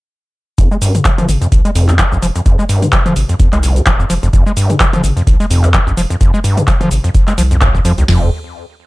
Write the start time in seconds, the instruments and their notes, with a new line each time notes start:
0.58 analog synth bass F1, acid bass F2, kick, closed hi-hat, cabasa
0.71 acid bass G#3, cabasa
0.82 acid bass G2, open hi-hat, cabasa
0.95 acid bass G#2, closed hi-hat, mid tom, cabasa
1.05 acid bass F3, kick, clap, closed hi-hat, cabasa
1.18 acid bass F3, closed hi-hat, mid tom, cabasa
1.28 analog synth bass G#1, open hi-hat, mid tom, cabasa
1.42 acid bass F2, closed hi-hat, cabasa
1.52 analog synth bass C2, kick, closed hi-hat, cabasa
1.65 acid bass G#3, closed hi-hat, cabasa
1.75 acid bass F1, analog synth bass F2, open hi-hat, cabasa
1.88 acid bass G#2, clap, closed hi-hat, cabasa
1.99 acid bass F3, kick, clap, closed hi-hat, cabasa
2.12 analog synth bass A#1, acid bass F2, cabasa
2.22 analog synth bass F1, acid bass F3, open hi-hat, cabasa
2.36 acid bass F2, closed hi-hat, cabasa
2.46 acid bass F2, kick, closed hi-hat, cabasa
2.59 acid bass G#3, cabasa
2.69 acid bass G2, open hi-hat, cabasa
2.82 acid bass G#2, closed hi-hat, mid tom, cabasa
2.92 acid bass F3, kick, clap, closed hi-hat, cabasa
3.06 acid bass F3, closed hi-hat, mid tom, cabasa
3.16 analog synth bass G#1, open hi-hat, cabasa
3.29 acid bass F2, closed hi-hat, cabasa
3.40 analog synth bass F2, kick, closed hi-hat, cabasa
3.52 analog synth bass C2, acid bass G#3, clap, closed hi-hat, cabasa
3.63 acid bass F1, open hi-hat, cabasa
3.76 acid bass G#2, closed hi-hat, cabasa
3.86 analog synth bass D#1, acid bass F3, kick, clap, closed hi-hat, cabasa
4.00 acid bass F2, cabasa
4.10 analog synth bass F1, acid bass F3, open hi-hat, cabasa
4.23 analog synth bass F1, acid bass F2, closed hi-hat, cabasa
4.33 analog synth bass F1, acid bass F2, kick, closed hi-hat, cabasa
4.46 acid bass G#3, cabasa
4.57 acid bass G2, open hi-hat, cabasa
4.70 acid bass G#2, closed hi-hat, mid tom, cabasa
4.80 acid bass F3, kick, clap, closed hi-hat, cabasa
4.93 acid bass F3, closed hi-hat, mid tom, cabasa
5.04 analog synth bass G#1, open hi-hat, mid tom, cabasa
5.17 acid bass F2, closed hi-hat, cabasa
5.27 analog synth bass C2, kick, closed hi-hat, cabasa
5.40 acid bass G#3, closed hi-hat, cabasa
5.50 acid bass F1, analog synth bass F2, open hi-hat, cabasa
5.63 acid bass G#2, clap, closed hi-hat, cabasa
5.74 acid bass F3, kick, clap, closed hi-hat, cabasa
5.87 analog synth bass A#1, acid bass F2, cabasa
5.97 analog synth bass F1, acid bass F3, open hi-hat, cabasa
6.10 acid bass F2, closed hi-hat, cabasa
6.21 acid bass F2, kick, closed hi-hat, cabasa
6.34 acid bass G#3, cabasa
6.44 acid bass G2, open hi-hat, cabasa
6.57 acid bass G#2, closed hi-hat, mid tom, cabasa
6.67 acid bass F3, kick, clap, closed hi-hat, cabasa
6.81 acid bass F3, closed hi-hat, mid tom, cabasa
6.91 analog synth bass G#1, open hi-hat, cabasa
7.04 acid bass F2, closed hi-hat, cabasa
7.15 kick, closed hi-hat, cabasa
7.27 acid bass G#3, clap, closed hi-hat, cabasa
7.38 analog synth bass C2, acid bass F3, open hi-hat, cabasa
7.51 acid bass F2, closed hi-hat, cabasa
7.61 acid bass F2, kick, clap, closed hi-hat, cabasa
7.75 acid bass F2, kick, cabasa
7.85 analog synth bass F2, acid bass F3, open hi-hat, cabasa
7.98 analog synth bass C2, acid bass D#2, closed hi-hat, cabasa
8.08 analog synth bass F1, acid bass F2, snare, floor tom, crash